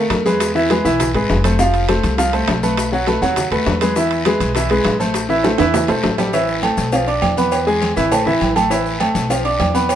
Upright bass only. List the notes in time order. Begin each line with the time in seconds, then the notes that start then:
0.10 E2
0.85 B1
1.14 G#1
1.30 F1
2.04 C2
2.48 B1
3.22 D#2
3.51 D#2
3.66 E2
4.40 B1
4.85 A1
5.59 E2
5.89 B1
6.04 A1
6.78 B1
7.22 E2
7.97 A1
8.41 A1
9.15 B1
9.60 E2